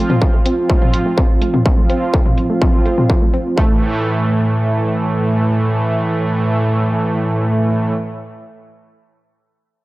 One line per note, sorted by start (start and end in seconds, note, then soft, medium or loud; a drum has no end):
0.00 0.55 F3 medium
0.00 0.55 C4 medium
0.00 0.55 F4 loud
0.10 0.15 C4 medium
0.10 mid tom medium
0.22 kick loud
0.34 0.39 A3 medium
0.46 0.51 C4 medium
0.46 closed hi-hat medium
0.58 1.63 F3 medium
0.58 1.63 C4 medium
0.58 1.63 F4 loud
0.70 0.75 A3 medium
0.70 kick loud
0.82 0.87 C4 medium
0.82 mid tom medium
0.94 closed hi-hat loud
1.06 1.11 A3 medium
1.18 1.23 C4 medium
1.18 kick loud
1.42 1.47 A3 medium
1.42 closed hi-hat medium
1.54 1.59 C4 medium
1.54 mid tom medium
1.66 2.47 F3 medium
1.66 2.47 C4 medium
1.66 2.47 F4 medium
1.66 kick loud
1.78 1.83 A3 medium
1.90 1.95 C4 medium
1.90 closed hi-hat loud
2.14 2.19 A3 medium
2.14 kick loud
2.26 2.31 C4 medium
2.26 mid tom medium
2.38 closed hi-hat medium
2.50 3.55 F3 medium
2.50 2.55 A3 medium
2.50 3.55 C4 medium
2.50 3.55 F4 loud
2.62 2.67 C4 medium
2.62 kick loud
2.86 2.91 A3 medium
2.86 closed hi-hat loud
2.98 3.03 C4 medium
2.98 mid tom medium
3.10 kick loud
3.22 3.27 A3 medium
3.34 3.39 C4 medium
3.34 closed hi-hat medium
3.58 7.93 A2 medium
3.58 7.93 E3 medium
3.58 3.80 A3 medium
3.58 7.93 A3 medium
3.58 kick loud